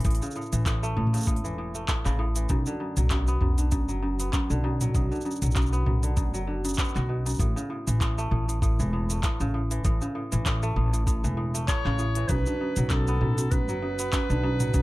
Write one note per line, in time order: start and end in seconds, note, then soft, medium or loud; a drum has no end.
0.00 0.25 E3 medium
0.00 0.83 A3 medium
0.00 open hi-hat soft
0.05 0.18 A1 medium
0.05 0.25 A2 medium
0.05 kick loud
0.05 open hi-hat soft
0.05 shaker soft
0.10 open hi-hat soft
0.15 open hi-hat soft
0.22 0.41 C#3 medium
0.22 shaker soft
0.25 shaker soft
0.31 shaker soft
0.35 0.65 A2 medium
0.35 shaker soft
0.42 shaker soft
0.46 shaker soft
0.53 0.92 A1 medium
0.53 1.17 E3 medium
0.53 mid tom medium
0.53 open hi-hat soft
0.53 shaker medium
0.66 0.95 A2 medium
0.66 kick loud
0.66 clap loud
0.66 open hi-hat soft
0.66 shaker soft
0.83 1.74 A3 loud
0.83 shaker soft
0.96 1.44 A1 medium
0.96 1.17 A2 medium
0.96 mid tom medium
1.07 mid tom medium
1.13 1.32 C#3 medium
1.13 open hi-hat soft
1.13 shaker soft
1.17 mid tom soft
1.17 shaker soft
1.21 open hi-hat soft
1.21 shaker soft
1.23 shaker soft
1.26 1.57 A2 medium
1.26 kick loud
1.26 open hi-hat soft
1.26 shaker soft
1.28 shaker medium
1.36 open hi-hat soft
1.44 1.84 E1 loud
1.44 2.09 E3 medium
1.44 shaker soft
1.58 1.87 A2 medium
1.75 3.75 A3 medium
1.75 shaker medium
1.88 2.09 A2 medium
1.88 kick loud
1.88 clap loud
1.88 open hi-hat soft
1.88 shaker medium
2.05 2.45 A1 medium
2.05 2.24 C#3 medium
2.05 clap soft
2.05 shaker soft
2.19 2.55 A2 medium
2.36 2.55 E3 medium
2.36 open hi-hat soft
2.36 shaker medium
2.49 2.63 B1 medium
2.49 2.79 F#2 medium
2.49 kick loud
2.49 open hi-hat soft
2.49 shaker soft
2.66 3.57 D3 medium
2.66 shaker soft
2.80 3.09 F#2 medium
2.97 3.36 B1 medium
2.97 3.62 F#3 medium
2.97 mid tom soft
2.97 open hi-hat soft
2.97 shaker medium
3.10 3.40 F#2 medium
3.10 kick loud
3.10 clap loud
3.10 open hi-hat soft
3.10 shaker medium
3.27 4.19 B3 medium
3.27 shaker soft
3.41 3.89 B1 medium
3.41 3.71 F#2 medium
3.41 mid tom medium
3.58 4.49 D3 medium
3.58 open hi-hat soft
3.58 shaker medium
3.72 4.01 F#2 medium
3.72 kick loud
3.72 open hi-hat soft
3.72 shaker medium
3.89 4.28 F#1 medium
3.89 4.54 F#3 medium
3.89 shaker soft
4.02 4.32 F#2 medium
4.20 5.72 B3 medium
4.20 open hi-hat soft
4.20 shaker medium
4.33 4.63 F#2 medium
4.33 kick loud
4.33 clap medium
4.33 open hi-hat soft
4.33 shaker medium
4.50 4.90 B1 medium
4.50 5.10 D3 medium
4.50 shaker soft
4.64 4.94 F#2 medium
4.81 5.15 F#3 medium
4.81 mid tom medium
4.81 open hi-hat soft
4.81 shaker medium
4.95 5.08 B1 medium
4.95 5.24 F#2 medium
4.95 kick loud
4.95 open hi-hat soft
4.95 shaker soft
5.12 6.02 D3 medium
5.12 shaker soft
5.15 shaker soft
5.21 shaker soft
5.25 5.55 F#2 medium
5.25 shaker soft
5.31 shaker soft
5.35 shaker soft
5.42 5.81 B1 medium
5.42 6.07 F#3 medium
5.42 mid tom medium
5.42 open hi-hat medium
5.42 shaker medium
5.46 shaker soft
5.51 shaker soft
5.56 5.85 F#2 medium
5.56 kick loud
5.56 clap medium
5.56 open hi-hat soft
5.56 shaker medium
5.62 shaker soft
5.66 shaker soft
5.73 6.78 B3 medium
5.73 shaker soft
5.86 6.34 B1 medium
5.86 6.15 F#2 medium
5.86 mid tom medium
6.03 6.46 D3 medium
6.03 open hi-hat soft
6.03 shaker medium
6.16 6.63 F#2 medium
6.16 kick loud
6.16 open hi-hat soft
6.16 shaker medium
6.34 6.73 F#1 medium
6.34 6.53 F#3 medium
6.34 shaker soft
6.47 7.14 D3 medium
6.65 7.14 F#2 medium
6.65 open hi-hat soft
6.65 shaker medium
6.68 shaker soft
6.74 shaker soft
6.78 8.65 B3 medium
6.78 kick loud
6.78 clap medium
6.78 open hi-hat soft
6.78 shaker medium
6.89 shaker soft
6.95 7.35 B1 medium
6.95 8.42 F#4 medium
6.95 clap soft
6.95 shaker soft
7.09 7.29 B2 medium
7.26 7.45 F#2 medium
7.26 open hi-hat soft
7.26 shaker medium
7.29 shaker soft
7.34 shaker soft
7.36 shaker soft
7.38 7.53 A1 medium
7.38 7.60 A2 medium
7.38 kick medium
7.38 open hi-hat soft
7.38 shaker soft
7.40 shaker soft
7.56 7.75 C#3 medium
7.56 shaker soft
7.70 8.00 A2 medium
7.87 8.27 A1 medium
7.87 8.78 E3 medium
7.87 mid tom medium
7.87 open hi-hat soft
7.87 shaker medium
8.01 8.30 A2 medium
8.01 kick loud
8.01 clap medium
8.01 open hi-hat soft
8.01 shaker medium
8.18 9.10 A3 loud
8.18 shaker soft
8.31 8.81 A1 medium
8.31 8.47 A2 medium
8.31 mid tom medium
8.48 8.61 A2 medium
8.48 open hi-hat soft
8.48 shaker medium
8.62 8.92 A2 medium
8.62 kick loud
8.62 open hi-hat soft
8.62 shaker medium
8.79 9.19 E1 medium
8.79 9.44 E3 medium
8.79 shaker soft
8.93 9.22 A2 medium
9.10 10.62 A3 medium
9.10 open hi-hat soft
9.10 shaker medium
9.23 9.44 A2 medium
9.23 kick medium
9.23 clap medium
9.23 open hi-hat soft
9.23 shaker medium
9.40 9.80 A1 medium
9.40 9.59 C#3 medium
9.40 shaker soft
9.54 9.83 A2 medium
9.71 10.05 E3 medium
9.71 open hi-hat soft
9.71 shaker medium
9.85 9.98 A1 medium
9.85 10.05 A2 medium
9.85 kick medium
9.85 open hi-hat soft
9.85 shaker soft
10.02 10.20 C#3 medium
10.02 shaker soft
10.15 10.45 A2 medium
10.32 10.72 A1 medium
10.32 11.23 E3 medium
10.32 mid tom medium
10.32 open hi-hat medium
10.32 shaker medium
10.46 10.75 A2 medium
10.46 kick medium
10.46 clap medium
10.46 open hi-hat soft
10.46 shaker medium
10.63 11.54 A3 loud
10.63 shaker soft
10.76 11.25 A1 medium
10.76 10.92 A2 medium
10.76 mid tom medium
10.93 11.05 A2 medium
10.93 open hi-hat soft
10.93 shaker soft
11.07 11.36 A2 medium
11.07 kick medium
11.07 open hi-hat soft
11.07 shaker soft
11.24 11.63 E1 medium
11.24 11.89 E3 medium
11.24 shaker soft
11.37 11.67 A2 medium
11.54 13.54 A3 medium
11.54 open hi-hat medium
11.54 shaker medium
11.68 11.89 A2 medium
11.68 12.30 C#5 loud
11.68 kick medium
11.68 clap medium
11.68 open hi-hat soft
11.68 shaker medium
11.85 12.24 A1 loud
11.85 12.04 C#3 medium
11.85 clap soft
11.99 12.34 A2 medium
11.99 shaker soft
12.15 12.34 E3 medium
12.15 open hi-hat soft
12.29 12.43 B1 medium
12.29 12.60 F#2 medium
12.29 12.92 B4 loud
12.29 kick medium
12.29 open hi-hat soft
12.29 shaker soft
12.46 14.29 D3 medium
12.46 shaker soft
12.61 12.90 F#2 medium
12.76 13.16 B1 loud
12.76 13.68 F#3 medium
12.76 mid tom medium
12.76 open hi-hat soft
12.76 shaker medium
12.90 13.20 F#2 medium
12.90 13.53 A4 medium
12.90 kick loud
12.90 clap loud
12.90 open hi-hat soft
12.90 shaker medium
13.07 13.99 B3 loud
13.07 shaker soft
13.21 13.68 B1 medium
13.21 13.37 F#2 medium
13.21 mid tom medium
13.38 13.50 F#2 medium
13.38 open hi-hat soft
13.38 shaker medium
13.51 13.81 F#2 medium
13.51 14.82 B4 loud
13.51 kick loud
13.51 open hi-hat soft
13.51 shaker soft
13.68 14.08 F#1 medium
13.68 14.33 F#3 medium
13.68 shaker soft
13.82 14.12 F#2 medium
13.99 14.82 B3 medium
13.99 open hi-hat medium
13.99 shaker medium
14.13 14.42 F#2 medium
14.13 kick medium
14.13 clap loud
14.13 open hi-hat soft
14.13 shaker medium
14.30 14.69 B1 medium
14.30 14.82 D3 medium
14.30 shaker soft
14.43 14.73 F#2 medium
14.60 14.82 F#3 medium
14.60 mid tom medium
14.60 open hi-hat medium
14.60 shaker medium
14.74 14.82 B1 medium
14.74 14.82 F#2 medium
14.74 kick medium
14.74 open hi-hat soft
14.74 shaker soft